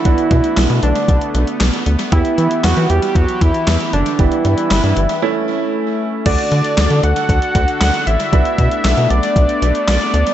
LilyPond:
<<
  \new Staff \with { instrumentName = "Analog synth lead" } { \time 4/4 \key d \major \tempo 4 = 116 e'4. d'2 r8 | e'4 fis'8 g'8 fis'8 e'4 d'8 | e'2. r4 | d''4. fis''4. fis''8 e''8~ |
e''4. d''4. d''4 | }
  \new Staff \with { instrumentName = "Grand piano" } { \time 4/4 \key d \major <b d' fis'>1 | <b e' g'>1 | <b d' g'>2 <a cis' e'>2 | <a d' fis'>1 |
<b d' fis'>1 | }
  \new Staff \with { instrumentName = "Analog synth pad" } { \time 4/4 \key d \major << { <a d'>1 | <e g'>1 | <g d' b'>2 a2 | <d d' a'>1 |
a1 | } \\ { b1~ | b1 | e'2 cis'2 | fis'1 |
b1 | } >> }
  \new Staff \with { instrumentName = "Analog synth bass" } { \clef bass \time 4/4 \key d \major b,,16 r16 b,16 r16 b,,16 b,16 b,,16 r16 b,,16 r16 b,,16 r16 b,,16 r16 d,16 r16 | e,16 r16 e16 r16 e,16 e16 e,16 r16 e,16 r16 e,16 r16 e,16 r16 fis,,16 r16 | g,,16 r16 g,16 r16 g,,16 g,16 g,,16 r2 r16 | d,16 r16 d16 r16 d,16 d16 d,16 r16 d,16 r16 d,16 r16 d,16 r16 a,,16 r16 |
b,,16 r16 b,16 r16 b,,16 b,16 b,,16 r16 b,,16 r16 b,,16 r16 b,,16 r16 d,16 r16 | }
  \new DrumStaff \with { instrumentName = "Drums" } \drummode { \time 4/4 <hh bd>16 hh16 <hh bd>16 hh16 <hc hh sn>16 hh16 hh16 hh16 <hh bd>16 hh16 hh16 hh16 <hc hh sn>16 hh16 hh16 hh16 | <hh bd>16 hh16 hh16 hh16 <hc hh sn>16 hh16 hh16 hh16 <hh bd>16 hh16 <hh bd>16 hh16 <hc hh sn>16 hh16 hh16 hh16 | <hh bd>16 hh16 hh16 hh16 <hc hh sn>16 hh16 hh16 hh16 r4 r4 | <cymc hh bd>16 hh16 hh16 hh16 <hc hh sn>16 hh16 hh16 hh16 <hh bd>16 hh16 <hh bd>16 hh16 <hc hh sn>16 hh16 hh16 hh16 |
<hh bd>16 hh16 <hh bd>16 hh16 <hc hh sn>16 hh16 hh16 hh16 <hh bd>16 hh16 hh16 hh16 <hc hh sn>16 hh16 hh16 hh16 | }
>>